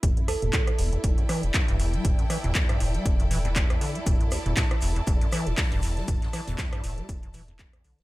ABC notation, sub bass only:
X:1
M:4/4
L:1/16
Q:"Swing 16ths" 1/4=119
K:Em
V:1 name="Sub bass" clef=bass
E,,, z2 E,,, z2 E,,, z E,,, z2 E,,, z E,,,2 z | E,,, z2 E,,, z2 E,,, z E,,,4 z4 | E,,, z2 E,,, z2 E,,, z E,,, z2 E,,, z E,,,2 z | E,,, z2 E,,, z2 E,,, z E,,,4 z2 B,,, D,,, |]